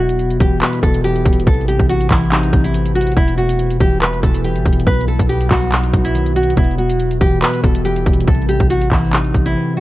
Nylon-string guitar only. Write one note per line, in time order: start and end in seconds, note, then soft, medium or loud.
0.00 0.38 F#4 medium
0.40 0.60 G4 medium
0.61 0.81 B4 medium
0.83 1.02 A4 medium
1.04 1.44 G4 medium
1.47 1.66 A4 medium
1.68 1.87 G4 medium
1.89 2.09 F#4 medium
2.11 2.30 E4 medium
2.32 2.62 D#4 medium
2.64 2.94 E4 medium
2.96 3.15 F#4 medium
3.17 3.36 E4 loud
3.38 3.78 F#4 medium
3.81 4.00 G4 loud
4.02 4.21 B4 medium
4.23 4.43 A4 medium
4.44 4.84 G4 medium
4.87 5.07 B4 medium
5.08 5.28 A4 medium
5.30 5.49 G4 medium
5.51 5.70 F#4 medium
5.72 6.03 D#4 loud
6.04 6.34 E4 medium
6.36 6.56 F#4 medium
6.57 6.77 E4 medium
6.79 7.19 F#4 medium
7.21 7.41 G4 medium
7.42 7.62 B4 medium
7.64 7.83 A4 medium
7.85 8.25 G4 medium
8.28 8.47 A4 medium
8.49 8.68 G4 medium
8.70 8.90 F#4 medium
8.92 9.11 E4 medium
9.13 9.43 D#4 medium
9.45 9.75 E4 medium
9.77 9.80 F#4 medium